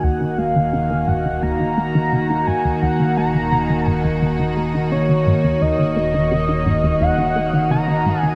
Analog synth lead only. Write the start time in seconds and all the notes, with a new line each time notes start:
0.04 F#5
0.38 F5
1.08 F#5
1.43 A#5
2.47 G#5
2.82 F#5
3.17 A#5
3.87 G#5
4.92 C#5
5.62 D#5
7.02 F#5
7.71 A#5
8.20 G#5